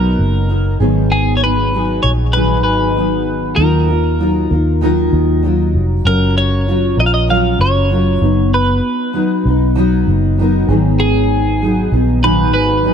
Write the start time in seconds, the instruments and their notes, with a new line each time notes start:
Already playing: fingered electric bass B1, steel-string acoustic guitar F#3 B3 D#4 A#4, clean electric guitar A#4
0.19 fingered electric bass F#1
0.48 steel-string acoustic guitar F#3 B3 D#4 A#4
0.80 fingered electric bass G#1, steel-string acoustic guitar G#2 D#3 F#3 B3 D#4 G#4
1.12 clean electric guitar G#4
1.37 clean electric guitar C#5
1.42 steel-string acoustic guitar F#3 B3 D#4 G#4, clean electric guitar B4
1.73 steel-string acoustic guitar F#3 B3 D#4 G#4
2.03 fingered electric bass A#1, clean electric guitar C#5
2.33 steel-string acoustic guitar G#2 D#3 F#3 B3 D#4 G#4, clean electric guitar B4
2.64 fingered electric bass G#1, clean electric guitar B4
2.96 steel-string acoustic guitar F#3 B3 D#4 G#4
3.56 fingered electric bass D#2, steel-string acoustic guitar D#3 F#3 D#4 F4 A#4, clean electric guitar A#4
3.88 steel-string acoustic guitar D#4 F4 A#4
4.19 steel-string acoustic guitar F#3 D#4 F4 A#4
4.50 fingered electric bass D#2, steel-string acoustic guitar D#4 F4 A#4
4.81 steel-string acoustic guitar D#3 F#3 D#4 F4 A#4
5.13 fingered electric bass D#2
5.43 steel-string acoustic guitar F#3 D#4 F4 A#4
5.74 fingered electric bass F1
6.05 fingered electric bass F#1, steel-string acoustic guitar F#3 C#4 F4 A#4, clean electric guitar A#4
6.38 clean electric guitar C#5
6.67 steel-string acoustic guitar F#3 C#4 F4 A#4
6.97 fingered electric bass A#1, steel-string acoustic guitar C#4 F4 A#4, clean electric guitar D#5
7.06 clean electric guitar F5
7.14 clean electric guitar D#5
7.28 steel-string acoustic guitar F#3 C#4 F4 A#4, clean electric guitar F5
7.59 fingered electric bass F#1, clean electric guitar C#5
7.90 steel-string acoustic guitar F#3 C#4 F4 A#4
8.21 fingered electric bass F#1, steel-string acoustic guitar F#3 B3 D#4
8.54 clean electric guitar B4
9.13 steel-string acoustic guitar F#3 B3 D#4
9.45 fingered electric bass B1, steel-string acoustic guitar B3 D#4
9.75 steel-string acoustic guitar F#3 B3 D#4
10.07 fingered electric bass F#1
10.38 steel-string acoustic guitar F#3 B3 D#4 A#4
10.68 fingered electric bass G#1, steel-string acoustic guitar G#2 D#3 F#3 B3 D#4 G#4
11.00 clean electric guitar G#4
11.62 steel-string acoustic guitar F#3 B3 D#4 G#4
11.91 fingered electric bass A#1, steel-string acoustic guitar F#3 B3 D#4 G#4
12.22 steel-string acoustic guitar G#2 D#3 F#3 B3 D#4 G#4, clean electric guitar B4
12.53 fingered electric bass G#1, clean electric guitar B4
12.83 steel-string acoustic guitar F#3 B3 D#4 G#4